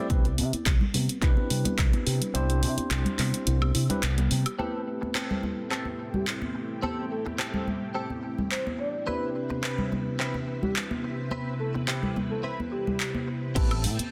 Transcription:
0.10 C2 G3 C4 D4 G4 B4, kick, closed hi-hat, high conga
0.25 B3, closed hi-hat
0.38 C3 C4, open hi-hat
0.53 E4, muted fingered electric bass stroke, closed hi-hat, high conga
0.66 C2 G4, kick, clap, closed hi-hat
0.81 G3, low conga
0.94 C3 B3, open hi-hat, high conga, low conga
1.09 C4, closed hi-hat
1.21 C2 C4 D4 E4 G4 B4, kick, clap, closed hi-hat
1.37 G4, high conga
1.50 C3 G3, open hi-hat
1.65 B3, muted fingered electric bass stroke, closed hi-hat, low conga
1.78 C2 E4, kick, clap, closed hi-hat, high woodblock
1.93 E4, closed hi-hat, high conga
2.06 C3 G4, open hi-hat
2.21 G3, closed hi-hat
2.34 C2 G3 C4 D4 E4 G4 C5, closed hi-hat, high conga
2.49 B3, closed hi-hat
2.62 C3 C4, open hi-hat
2.77 E4, muted fingered electric bass stroke, closed hi-hat, high conga
2.90 C2 G4, clap, closed hi-hat
3.05 G3, closed hi-hat, low conga
3.18 C3 B3, clap, open hi-hat, high conga, low conga
3.34 C4, closed hi-hat
3.47 C2 E4, closed hi-hat
3.62 G4, high conga, high woodblock
3.75 C3 E4, open hi-hat
3.90 G3 C4 D4 E4 G4 B4, muted fingered electric bass stroke, closed hi-hat, low conga
4.03 C2 B3, clap, closed hi-hat
4.18 G3, closed hi-hat, high conga
4.31 C3 G3, open hi-hat
4.46 G4, closed hi-hat, high woodblock
4.58 A3 C4 E4 G4 A4 B4, high conga
5.01 muted clean electric guitar stroke, high conga
5.14 C4 G4 A4, clap
5.31 low conga
5.43 high conga, low conga
5.71 C4 G4 A4, clap
5.85 high conga
5.99 muted clean electric guitar stroke
6.14 G4, low conga
6.28 clap
6.42 high conga
6.55 muted clean electric guitar stroke
6.82 C4 G4 A4, high conga
7.11 A4
7.26 muted clean electric guitar stroke, high conga
7.38 C4 G4 A4, clap
7.54 low conga
7.67 high conga, low conga
7.94 C4 G4 A4
8.10 high conga
8.23 muted clean electric guitar stroke
8.38 low conga
8.51 C5, clap
8.67 high conga
8.79 D5, muted clean electric guitar stroke
9.06 C3 C4 D4 E4 G4 B4, high conga
9.50 muted clean electric guitar stroke, high conga
9.63 C4 E4 B4, clap
9.78 low conga
9.92 high conga, low conga
10.19 C4 E4 B4, clap
10.34 high conga
10.48 muted clean electric guitar stroke
10.62 G4, low conga
10.76 clap
10.91 high conga
11.04 muted clean electric guitar stroke
11.31 C4 E4 B4, high conga
11.60 A4
11.74 muted clean electric guitar stroke, high conga
11.87 C4 E4 G4, clap
12.03 low conga
12.16 high conga, low conga
12.30 A4
12.43 C4 E4 B4
12.60 high conga
12.71 G4, muted clean electric guitar stroke
12.87 low conga
13.00 clap
13.14 high conga
13.28 muted clean electric guitar stroke
13.55 A1 A3 C4 E4 G4 A4 B4 G5 A5 E6, kick, closed hi-hat, crash, high conga
13.71 closed hi-hat, high woodblock
13.84 A2, open hi-hat
13.99 muted fingered electric bass stroke, closed hi-hat, high conga

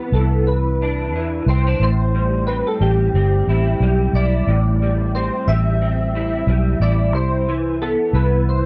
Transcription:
Already playing: C3 E3 B3 D4 B4
0.12 C2 E3 A4
0.47 B4
0.82 D4
1.13 E2 E3
1.46 C2 C4 C5
1.67 D4
1.80 A1 A2 C5
2.15 G3
2.47 C4 B4
2.67 A4
2.81 A1 G3 G4
3.14 G1 C4
3.47 A1 E4
3.80 B1 G3
4.13 B1 E4 D5
4.47 A1 A2
4.82 G3
5.15 C4 C5
5.48 A1 G3 E5
5.82 C4
6.15 E4
6.47 B1 G3
6.80 A1 E4 D5
7.13 C2 C5
7.49 E3
7.82 B3 A4
8.13 C2 E3 B4
8.49 C5

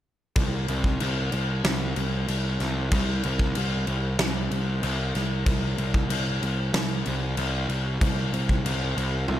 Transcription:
0.36 C2, kick, crash
0.68 C2, crash
0.84 kick
1.00 C2, crash
1.32 C2, crash
1.64 C2, snare, crash
1.96 C2, crash
2.28 C2, crash
2.60 C2, snare, crash
2.91 C2, kick, crash
3.23 C2, crash
3.39 kick
3.55 C2, crash
3.87 C2, crash
4.19 C2, snare, crash
4.51 C2, crash
4.83 C2, crash
5.15 C2, snare, crash
5.46 C2, kick, crash
5.78 C2, crash
5.94 kick
6.10 C2, crash
6.42 C2, crash
6.74 C2, snare, crash
7.06 C2, crash
7.37 C2, crash
7.69 C2, crash
8.01 C2, kick, crash
8.33 C2, crash
8.49 kick
8.65 C2, crash
8.97 C2, crash
9.28 C2, high tom

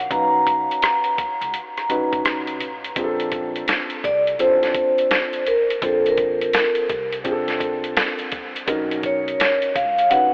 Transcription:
0.10 B1 C#4 D#4 F#4 B4 A#5, kick, closed hi-hat
0.47 kick, closed hi-hat
0.71 closed hi-hat
0.82 cross-stick, closed hi-hat
1.04 closed hi-hat
1.18 kick, closed hi-hat
1.41 C#2, closed hi-hat
1.54 closed hi-hat
1.77 cross-stick, closed hi-hat
1.89 A#1 C#4 D#4 F#4 B4, closed hi-hat
2.13 B1, kick, closed hi-hat
2.25 C#2, cross-stick, closed hi-hat
2.47 closed hi-hat
2.60 A1, closed hi-hat
2.84 closed hi-hat
2.96 A#1 C4 D4 F4 G#4, kick, closed hi-hat
3.04 A4
3.20 closed hi-hat
3.32 kick, closed hi-hat
3.56 closed hi-hat
3.68 snare, closed hi-hat
3.90 closed hi-hat
4.04 C2 D5, kick, closed hi-hat
4.27 closed hi-hat
4.39 A1 C4 D4 F4 A4 C5, closed hi-hat
4.63 snare, closed hi-hat
4.75 kick, closed hi-hat
4.98 closed hi-hat
5.11 snare, closed hi-hat
5.33 closed hi-hat
5.47 A#4, closed hi-hat
5.70 closed hi-hat
5.82 A#1 C4 D4 F4 A4 C5, kick, closed hi-hat
6.06 A#4, closed hi-hat
6.17 kick, closed hi-hat
6.41 closed hi-hat
6.53 snare, closed hi-hat
6.75 closed hi-hat
6.89 C2, kick, closed hi-hat
7.13 closed hi-hat
7.24 C4 D4 F4 G#4, kick, closed hi-hat
7.32 A4
7.48 snare, closed hi-hat
7.60 kick, closed hi-hat
7.84 closed hi-hat
7.97 snare, closed hi-hat
8.19 closed hi-hat
8.32 kick, closed hi-hat
8.56 closed hi-hat
8.67 B1 C#4 D#4 F#4 A#4, kick, closed hi-hat
8.91 closed hi-hat
9.03 C#5, kick, closed hi-hat
9.28 closed hi-hat
9.40 snare, closed hi-hat
9.62 closed hi-hat
9.76 C#2 F5, kick, closed hi-hat
9.98 closed hi-hat
10.10 A#1 C#4 D#4 F#4 B4 F#5, closed hi-hat

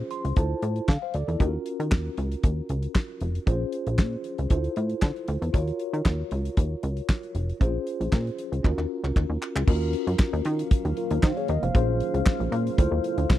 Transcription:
Already playing: C#4 F4 G#4 C5
0.11 C6, closed hi-hat
0.25 C#2, closed hi-hat
0.36 D2 E4 F4 A4 C5 A5, kick, closed hi-hat
0.62 A2, closed hi-hat
0.76 closed hi-hat
0.88 D3 F5, kick, snare, clap
1.02 C5 F5
1.14 D2 A4 D5, closed hi-hat
1.28 E2 E4 A4, closed hi-hat
1.39 D#2 C#4 F4 F#4 A#4, kick, closed hi-hat
1.66 closed hi-hat
1.80 D#3, closed hi-hat
1.91 D#2, kick, snare, clap
2.17 C#2, closed hi-hat
2.32 closed hi-hat
2.43 D#2, kick, closed hi-hat
2.69 C#2, closed hi-hat
2.83 closed hi-hat
2.95 kick, snare, clap
3.21 F1, closed hi-hat
3.35 closed hi-hat
3.46 A#1 C#4 F4 G#4 C5, kick, closed hi-hat
3.72 closed hi-hat
3.87 A#1, closed hi-hat
3.98 A#2, kick, snare, clap
4.24 closed hi-hat
4.38 C#2, closed hi-hat
4.50 D2 E4 F4 A4 C5, kick, closed hi-hat
4.64 closed hi-hat
4.76 A2, closed hi-hat
4.90 closed hi-hat
5.02 D3, kick, snare, clap
5.16 closed hi-hat
5.28 D2, closed hi-hat
5.42 E2, closed hi-hat
5.53 D#2 F4 F#4 A#4 C#5, kick, closed hi-hat
5.68 closed hi-hat
5.80 closed hi-hat
5.93 D#3, closed hi-hat
6.05 D#2, kick, snare, clap
6.31 C#2, closed hi-hat
6.45 closed hi-hat
6.57 D#2, kick, closed hi-hat
6.83 C#2, closed hi-hat
6.97 closed hi-hat
7.09 kick, snare, clap
7.23 closed hi-hat
7.35 F1, closed hi-hat
7.50 closed hi-hat
7.60 A#1 C#4 F4 G#4 C5, kick, closed hi-hat
7.87 closed hi-hat
8.00 A#1, closed hi-hat
8.12 A#2, kick, snare, clap
8.27 closed hi-hat
8.38 closed hi-hat
8.52 C#2, closed hi-hat
8.63 D#2 C#4 F4 F#4 A#4, kick, clap
8.78 D#2, clap
9.04 C#2, clap
9.16 D#2, kick, clap
9.29 D#2
9.42 clap
9.56 C#2, clap
9.67 D#2 D#3 F#3 A#3 C#4 F4 F#4 A#4 F5, kick, crash
9.81 closed hi-hat
9.93 closed hi-hat
10.07 F#2, closed hi-hat
10.19 kick, snare, clap
10.33 D#2, closed hi-hat
10.45 D#3, closed hi-hat
10.59 closed hi-hat
10.71 kick, closed hi-hat
10.85 D#2, closed hi-hat
10.97 F4 A#4, closed hi-hat
11.11 D#2, closed hi-hat
11.23 D#3 F#4 C5, kick, snare, clap
11.37 G#4 C#5, closed hi-hat
11.48 D#2 A#4 D#5, closed hi-hat
11.62 F1 C5 F5, closed hi-hat
11.74 A#1 C#4 F4 G#4 C5, kick, closed hi-hat
12.00 closed hi-hat
12.14 C#2, closed hi-hat
12.26 kick, snare, clap
12.40 A#1, closed hi-hat
12.52 A#2, closed hi-hat
12.67 closed hi-hat
12.78 D2 E4 F4 A4 C5, kick, closed hi-hat
12.91 D#2
13.04 closed hi-hat
13.18 D2, closed hi-hat
13.30 C2, kick, snare, clap

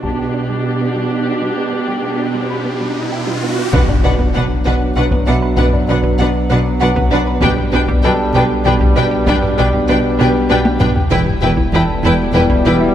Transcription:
Already playing: E5
0.03 B2 G3 D4 G4 A5, taiko, riser
0.19 G4
0.34 D4
0.50 G3
0.81 B3
0.96 G3
1.27 G4
1.42 G3
1.58 B3
1.73 B3
1.87 G3 G4 G5
2.04 G4
2.20 D4
2.35 G3
2.50 B5
2.65 B3
2.81 G3
3.12 G4
3.27 G3
3.43 B3
3.58 B3
3.73 B1 B2 F#3 B3 D4 B4 F#5, taiko, impact
3.88 D4, taiko low-mid
4.04 B1 B2 D4 B4 F#5
4.19 B3, taiko
4.34 B1 B2 D4 B4 F#5
4.65 B1 B2 B3 D4 F#4 B4 F#5
4.96 B1 B2 D4 F#4 B4 F#5
5.11 B3, taiko
5.27 B1 B2 D4 B4 E5 F#5
5.42 B4
5.57 B1 B2 B3 D4 B4 F#5, taiko
5.73 D4, taiko low-mid
5.88 B1 B2 D4 B4 F#5
6.04 B3, taiko
6.19 B1 B2 D4 B4 F#5
6.50 B1 B2 B3 D4 B4 F#5
6.80 B1 B2 D4 F#4 B4 F#5
6.96 B3, taiko
7.11 B1 B2 D4 B4 F#5
7.27 B4
7.41 B1 B2 G3 B3 D4 B4 G5, taiko
7.57 B3, taiko low-mid
7.72 B1 B2 B3 D4 B4 G5
7.88 G3, taiko
8.03 B1 B2 D4 A4 B4 G5
8.34 B1 B2 G3 D4 B4 G5
8.65 B1 B2 D4 B4 G5
8.81 G3, taiko
8.96 B1 B2 B3 D4 B4 G5
9.11 G4
9.27 B1 B2 G3 D4 B4 G5, taiko
9.42 B3, taiko low-mid
9.58 B1 B2 B3 D4 B4 G5
9.73 G3, taiko
9.88 B1 B2 D4 B4 G5
10.18 B1 B2 G3 D4 G4 B4 G5
10.49 B1 B2 D4 B4 G5
10.65 G3, taiko high
10.80 B1 B2 B3 D4 B4 G5, taiko low-mid
10.96 G4, taiko low
11.11 E1 E2 B2 E3 G3 B3 E4 B4 G5, taiko
11.26 G3, taiko low-mid
11.42 E1 E2 G3 E4 B4 G5
11.57 E3, taiko
11.73 E1 E2 E4 A4 B4 G5
12.03 E1 E2 E3 E4 B4 G5
12.34 E1 E2 B3 E4 B4 D5 G5
12.50 E3, taiko
12.65 E1 E2 G3 E4 B4 G5
12.81 E4

